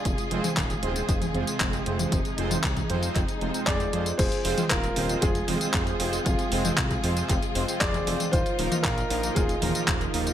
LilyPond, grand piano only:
\new Staff \with { instrumentName = "Grand piano" } { \time 4/4 \key f \dorian \tempo 4 = 116 r1 | r2. <aes' d''>4 | <aes' c''>4 <f' bes'>4 <f' aes'>2 | <c' f'>4. r4. <aes' d''>4 |
<f' c''>4 <f' bes'>4 <f' aes'>2 | }